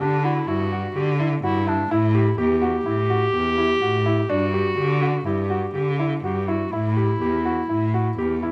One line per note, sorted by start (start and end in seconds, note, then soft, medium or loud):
0.01 0.45 D3 medium
0.01 0.25 D4 medium
0.01 0.14 G4 medium
0.24 0.49 E4 medium
0.24 0.38 F#4 medium
0.48 0.93 G2 medium
0.48 0.61 E4 medium
0.48 1.17 F#4 medium
0.72 0.85 F#4 medium
0.96 1.40 D3 medium
0.96 1.09 G4 medium
1.20 1.33 E4 medium
1.43 1.88 G2 medium
1.43 1.69 E4 medium
1.43 1.57 F#4 medium
1.67 1.93 D4 medium
1.67 1.80 E4 medium
1.91 2.36 A2 loud
1.91 2.04 E4 medium
1.91 2.38 E4 medium
2.15 2.28 G4 medium
2.38 2.83 E2 medium
2.38 2.51 G4 medium
2.38 4.31 G4 loud
2.62 2.75 F#4 medium
2.86 3.31 A2 medium
2.86 2.99 E4 medium
3.10 3.23 F#4 medium
3.34 3.79 E2 medium
3.34 3.47 G4 medium
3.58 3.71 E4 medium
3.82 4.27 A2 medium
3.82 3.95 F#4 medium
4.06 4.19 E4 medium
4.30 4.75 G2 medium
4.30 4.43 D4 medium
4.30 5.25 F#4 loud
4.53 4.67 G4 medium
4.77 5.23 D3 medium
4.77 4.91 G4 medium
5.02 5.15 F#4 medium
5.26 5.72 G2 medium
5.26 5.39 E4 medium
5.26 5.93 G4 medium
5.50 5.64 F#4 medium
5.75 6.21 D3 medium
5.75 5.89 G4 medium
5.99 6.13 E4 medium
6.24 6.69 G2 medium
6.24 6.37 F#4 medium
6.24 6.49 G4 medium
6.48 6.62 E4 medium
6.48 6.73 F#4 medium
6.72 7.18 A2 loud
6.72 8.52 E4 medium
6.72 6.86 E4 medium
6.97 7.10 G4 medium
7.21 7.67 E2 medium
7.21 7.35 G4 medium
7.45 7.59 F#4 medium
7.69 8.15 A2 medium
7.69 7.83 E4 medium
7.94 8.07 F#4 medium
8.18 8.52 E2 medium
8.18 8.32 G4 medium
8.43 8.52 E4 medium